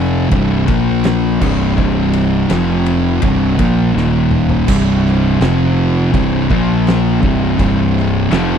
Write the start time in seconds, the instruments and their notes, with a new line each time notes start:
Already playing: fingered electric bass F1, distorted electric guitar F2 C3 F3
0.29 fingered electric bass C1, distorted electric guitar C2 G2 C3, kick, ride
0.67 fingered electric bass A#1, distorted electric guitar A#2 F3 A#3, kick, ride
1.04 snare, ride
1.41 fingered electric bass C1, distorted electric guitar C2 G2 C3, kick, crash
1.76 fingered electric bass C1, distorted electric guitar C2 G2 C3, kick
2.13 ride
2.49 fingered electric bass F1, distorted electric guitar F2 C3 F3, snare, ride
2.86 ride
3.22 fingered electric bass C1, distorted electric guitar C2 G2 C3, kick, ride
3.57 fingered electric bass A#1, distorted electric guitar A#2 F3 A#3, kick, ride
3.93 fingered electric bass D#1, distorted electric guitar D#2 A#2 D#3, snare
4.31 mid tom
4.50 floor tom
4.67 fingered electric bass C1, distorted electric guitar C2 G2 C3, kick, crash
5.06 snare
5.40 fingered electric bass F1, distorted electric guitar F2 C3 F3, snare, crash
6.13 fingered electric bass C1, distorted electric guitar C2 G2 C3, kick, crash
6.50 fingered electric bass A#1, distorted electric guitar A#2 F3 A#3, kick
6.87 snare, crash
7.21 fingered electric bass C1, distorted electric guitar C2 G2 C3, kick
7.58 fingered electric bass C1, distorted electric guitar C2 G2 C3, kick, crash
7.98 snare
8.30 fingered electric bass F1, distorted electric guitar F2 C3 F3, snare, crash